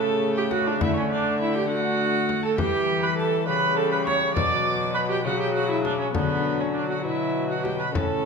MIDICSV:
0, 0, Header, 1, 7, 480
1, 0, Start_track
1, 0, Tempo, 592300
1, 652, Time_signature, 6, 3, 24, 8
1, 4489, Tempo, 601805
1, 6653, End_track
2, 0, Start_track
2, 0, Title_t, "Violin"
2, 0, Program_c, 0, 40
2, 0, Note_on_c, 0, 81, 90
2, 277, Note_off_c, 0, 81, 0
2, 282, Note_on_c, 0, 79, 84
2, 409, Note_on_c, 0, 78, 84
2, 422, Note_off_c, 0, 79, 0
2, 520, Note_off_c, 0, 78, 0
2, 525, Note_on_c, 0, 74, 79
2, 644, Note_off_c, 0, 74, 0
2, 649, Note_on_c, 0, 76, 101
2, 757, Note_off_c, 0, 76, 0
2, 762, Note_on_c, 0, 73, 70
2, 812, Note_off_c, 0, 73, 0
2, 888, Note_on_c, 0, 74, 92
2, 1122, Note_off_c, 0, 74, 0
2, 1127, Note_on_c, 0, 76, 91
2, 1242, Note_on_c, 0, 79, 84
2, 1254, Note_off_c, 0, 76, 0
2, 1357, Note_off_c, 0, 79, 0
2, 1362, Note_on_c, 0, 78, 93
2, 1967, Note_on_c, 0, 81, 89
2, 1979, Note_off_c, 0, 78, 0
2, 2083, Note_off_c, 0, 81, 0
2, 2088, Note_on_c, 0, 79, 99
2, 2444, Note_off_c, 0, 79, 0
2, 2453, Note_on_c, 0, 83, 86
2, 2571, Note_off_c, 0, 83, 0
2, 2579, Note_on_c, 0, 81, 86
2, 2811, Note_off_c, 0, 81, 0
2, 2821, Note_on_c, 0, 83, 94
2, 3051, Note_off_c, 0, 83, 0
2, 3059, Note_on_c, 0, 81, 85
2, 3170, Note_off_c, 0, 81, 0
2, 3175, Note_on_c, 0, 83, 80
2, 3288, Note_off_c, 0, 83, 0
2, 3292, Note_on_c, 0, 85, 93
2, 3525, Note_off_c, 0, 85, 0
2, 3543, Note_on_c, 0, 86, 102
2, 4020, Note_on_c, 0, 83, 94
2, 4032, Note_off_c, 0, 86, 0
2, 4135, Note_off_c, 0, 83, 0
2, 4145, Note_on_c, 0, 79, 79
2, 4256, Note_off_c, 0, 79, 0
2, 4262, Note_on_c, 0, 78, 98
2, 4374, Note_off_c, 0, 78, 0
2, 4393, Note_on_c, 0, 79, 84
2, 4500, Note_off_c, 0, 79, 0
2, 4506, Note_on_c, 0, 78, 74
2, 4616, Note_on_c, 0, 76, 75
2, 4628, Note_off_c, 0, 78, 0
2, 4732, Note_off_c, 0, 76, 0
2, 4742, Note_on_c, 0, 74, 79
2, 4852, Note_off_c, 0, 74, 0
2, 4867, Note_on_c, 0, 73, 75
2, 4911, Note_off_c, 0, 73, 0
2, 4982, Note_on_c, 0, 71, 90
2, 5337, Note_on_c, 0, 73, 70
2, 5349, Note_off_c, 0, 71, 0
2, 5450, Note_off_c, 0, 73, 0
2, 5462, Note_on_c, 0, 74, 72
2, 5571, Note_off_c, 0, 74, 0
2, 5579, Note_on_c, 0, 78, 75
2, 5689, Note_off_c, 0, 78, 0
2, 5702, Note_on_c, 0, 76, 79
2, 6061, Note_on_c, 0, 78, 74
2, 6073, Note_off_c, 0, 76, 0
2, 6174, Note_off_c, 0, 78, 0
2, 6181, Note_on_c, 0, 79, 75
2, 6298, Note_on_c, 0, 83, 78
2, 6310, Note_off_c, 0, 79, 0
2, 6416, Note_on_c, 0, 81, 88
2, 6428, Note_off_c, 0, 83, 0
2, 6653, Note_off_c, 0, 81, 0
2, 6653, End_track
3, 0, Start_track
3, 0, Title_t, "Viola"
3, 0, Program_c, 1, 41
3, 0, Note_on_c, 1, 69, 115
3, 293, Note_off_c, 1, 69, 0
3, 303, Note_on_c, 1, 67, 94
3, 348, Note_off_c, 1, 67, 0
3, 412, Note_on_c, 1, 66, 105
3, 544, Note_on_c, 1, 62, 90
3, 556, Note_off_c, 1, 66, 0
3, 657, Note_on_c, 1, 64, 106
3, 669, Note_off_c, 1, 62, 0
3, 774, Note_off_c, 1, 64, 0
3, 788, Note_on_c, 1, 61, 89
3, 898, Note_off_c, 1, 61, 0
3, 907, Note_on_c, 1, 62, 103
3, 1134, Note_off_c, 1, 62, 0
3, 1139, Note_on_c, 1, 64, 107
3, 1253, Note_off_c, 1, 64, 0
3, 1271, Note_on_c, 1, 67, 95
3, 1379, Note_off_c, 1, 67, 0
3, 1386, Note_on_c, 1, 66, 113
3, 1967, Note_off_c, 1, 66, 0
3, 1984, Note_on_c, 1, 69, 95
3, 2096, Note_off_c, 1, 69, 0
3, 2101, Note_on_c, 1, 67, 117
3, 2456, Note_on_c, 1, 71, 102
3, 2468, Note_off_c, 1, 67, 0
3, 2571, Note_off_c, 1, 71, 0
3, 2576, Note_on_c, 1, 69, 109
3, 2802, Note_off_c, 1, 69, 0
3, 2807, Note_on_c, 1, 71, 116
3, 3052, Note_on_c, 1, 69, 110
3, 3065, Note_off_c, 1, 71, 0
3, 3169, Note_off_c, 1, 69, 0
3, 3174, Note_on_c, 1, 71, 101
3, 3221, Note_off_c, 1, 71, 0
3, 3283, Note_on_c, 1, 73, 118
3, 3511, Note_off_c, 1, 73, 0
3, 3516, Note_on_c, 1, 74, 117
3, 3993, Note_off_c, 1, 74, 0
3, 4003, Note_on_c, 1, 71, 111
3, 4052, Note_off_c, 1, 71, 0
3, 4129, Note_on_c, 1, 67, 95
3, 4241, Note_off_c, 1, 67, 0
3, 4246, Note_on_c, 1, 66, 109
3, 4366, Note_off_c, 1, 66, 0
3, 4372, Note_on_c, 1, 67, 84
3, 4482, Note_off_c, 1, 67, 0
3, 4487, Note_on_c, 1, 66, 104
3, 4606, Note_off_c, 1, 66, 0
3, 4618, Note_on_c, 1, 64, 89
3, 4722, Note_off_c, 1, 64, 0
3, 4727, Note_on_c, 1, 62, 92
3, 4842, Note_off_c, 1, 62, 0
3, 4847, Note_on_c, 1, 61, 86
3, 4957, Note_off_c, 1, 61, 0
3, 4962, Note_on_c, 1, 59, 107
3, 5334, Note_on_c, 1, 61, 80
3, 5346, Note_off_c, 1, 59, 0
3, 5442, Note_on_c, 1, 62, 91
3, 5454, Note_off_c, 1, 61, 0
3, 5559, Note_off_c, 1, 62, 0
3, 5564, Note_on_c, 1, 66, 87
3, 5679, Note_off_c, 1, 66, 0
3, 5684, Note_on_c, 1, 64, 97
3, 6038, Note_off_c, 1, 64, 0
3, 6051, Note_on_c, 1, 66, 83
3, 6157, Note_on_c, 1, 67, 93
3, 6169, Note_off_c, 1, 66, 0
3, 6276, Note_off_c, 1, 67, 0
3, 6280, Note_on_c, 1, 71, 87
3, 6400, Note_off_c, 1, 71, 0
3, 6405, Note_on_c, 1, 69, 104
3, 6653, Note_off_c, 1, 69, 0
3, 6653, End_track
4, 0, Start_track
4, 0, Title_t, "Harp"
4, 0, Program_c, 2, 46
4, 0, Note_on_c, 2, 45, 68
4, 0, Note_on_c, 2, 49, 64
4, 0, Note_on_c, 2, 57, 58
4, 0, Note_on_c, 2, 61, 55
4, 0, Note_on_c, 2, 64, 61
4, 611, Note_off_c, 2, 57, 0
4, 620, Note_on_c, 2, 57, 60
4, 632, Note_on_c, 2, 62, 57
4, 653, Note_on_c, 2, 50, 65
4, 664, Note_off_c, 2, 61, 0
4, 668, Note_off_c, 2, 64, 0
4, 669, Note_off_c, 2, 49, 0
4, 675, Note_off_c, 2, 45, 0
4, 1330, Note_off_c, 2, 57, 0
4, 1340, Note_on_c, 2, 57, 62
4, 1341, Note_off_c, 2, 62, 0
4, 1351, Note_on_c, 2, 62, 62
4, 2075, Note_on_c, 2, 59, 61
4, 2083, Note_on_c, 2, 67, 56
4, 2092, Note_on_c, 2, 52, 65
4, 2096, Note_off_c, 2, 57, 0
4, 2102, Note_off_c, 2, 62, 0
4, 2112, Note_off_c, 2, 50, 0
4, 2815, Note_on_c, 2, 49, 62
4, 3491, Note_off_c, 2, 59, 0
4, 3501, Note_on_c, 2, 59, 60
4, 3521, Note_on_c, 2, 66, 59
4, 3532, Note_on_c, 2, 47, 69
4, 3544, Note_off_c, 2, 67, 0
4, 3548, Note_off_c, 2, 52, 0
4, 3549, Note_off_c, 2, 49, 0
4, 4250, Note_on_c, 2, 49, 62
4, 4948, Note_on_c, 2, 57, 57
4, 4954, Note_off_c, 2, 66, 0
4, 4957, Note_on_c, 2, 62, 59
4, 4964, Note_on_c, 2, 66, 60
4, 4972, Note_off_c, 2, 59, 0
4, 4975, Note_on_c, 2, 50, 62
4, 4986, Note_off_c, 2, 49, 0
4, 4987, Note_off_c, 2, 47, 0
4, 5688, Note_on_c, 2, 47, 56
4, 6372, Note_off_c, 2, 57, 0
4, 6381, Note_on_c, 2, 57, 51
4, 6391, Note_on_c, 2, 61, 51
4, 6403, Note_on_c, 2, 64, 53
4, 6411, Note_on_c, 2, 45, 52
4, 6423, Note_off_c, 2, 62, 0
4, 6427, Note_off_c, 2, 66, 0
4, 6430, Note_off_c, 2, 47, 0
4, 6432, Note_off_c, 2, 50, 0
4, 6653, Note_off_c, 2, 45, 0
4, 6653, Note_off_c, 2, 57, 0
4, 6653, Note_off_c, 2, 61, 0
4, 6653, Note_off_c, 2, 64, 0
4, 6653, End_track
5, 0, Start_track
5, 0, Title_t, "Viola"
5, 0, Program_c, 3, 41
5, 0, Note_on_c, 3, 57, 81
5, 637, Note_off_c, 3, 57, 0
5, 649, Note_on_c, 3, 57, 72
5, 1355, Note_off_c, 3, 57, 0
5, 1363, Note_on_c, 3, 57, 83
5, 2087, Note_on_c, 3, 55, 72
5, 2099, Note_off_c, 3, 57, 0
5, 2809, Note_off_c, 3, 55, 0
5, 2813, Note_on_c, 3, 55, 85
5, 3515, Note_off_c, 3, 55, 0
5, 3528, Note_on_c, 3, 54, 71
5, 4236, Note_off_c, 3, 54, 0
5, 4249, Note_on_c, 3, 54, 82
5, 4952, Note_off_c, 3, 54, 0
5, 4962, Note_on_c, 3, 54, 76
5, 6377, Note_off_c, 3, 54, 0
5, 6406, Note_on_c, 3, 61, 63
5, 6653, Note_off_c, 3, 61, 0
5, 6653, End_track
6, 0, Start_track
6, 0, Title_t, "Bassoon"
6, 0, Program_c, 4, 70
6, 0, Note_on_c, 4, 49, 73
6, 652, Note_on_c, 4, 50, 78
6, 664, Note_off_c, 4, 49, 0
6, 1866, Note_off_c, 4, 50, 0
6, 2093, Note_on_c, 4, 52, 78
6, 2811, Note_on_c, 4, 49, 75
6, 2823, Note_off_c, 4, 52, 0
6, 3521, Note_off_c, 4, 49, 0
6, 3526, Note_on_c, 4, 47, 80
6, 4256, Note_on_c, 4, 49, 77
6, 4268, Note_off_c, 4, 47, 0
6, 4963, Note_off_c, 4, 49, 0
6, 4968, Note_on_c, 4, 50, 69
6, 5670, Note_off_c, 4, 50, 0
6, 5687, Note_on_c, 4, 47, 70
6, 6412, Note_on_c, 4, 45, 74
6, 6423, Note_off_c, 4, 47, 0
6, 6653, Note_off_c, 4, 45, 0
6, 6653, End_track
7, 0, Start_track
7, 0, Title_t, "Frame drum"
7, 415, Note_on_c, 9, 64, 52
7, 496, Note_off_c, 9, 64, 0
7, 657, Note_on_c, 9, 64, 81
7, 738, Note_off_c, 9, 64, 0
7, 1858, Note_on_c, 9, 64, 47
7, 1939, Note_off_c, 9, 64, 0
7, 2093, Note_on_c, 9, 64, 80
7, 2174, Note_off_c, 9, 64, 0
7, 3299, Note_on_c, 9, 64, 52
7, 3380, Note_off_c, 9, 64, 0
7, 3538, Note_on_c, 9, 64, 79
7, 3619, Note_off_c, 9, 64, 0
7, 4736, Note_on_c, 9, 64, 49
7, 4816, Note_off_c, 9, 64, 0
7, 4972, Note_on_c, 9, 64, 74
7, 5052, Note_off_c, 9, 64, 0
7, 6173, Note_on_c, 9, 64, 49
7, 6253, Note_off_c, 9, 64, 0
7, 6413, Note_on_c, 9, 64, 82
7, 6493, Note_off_c, 9, 64, 0
7, 6653, End_track
0, 0, End_of_file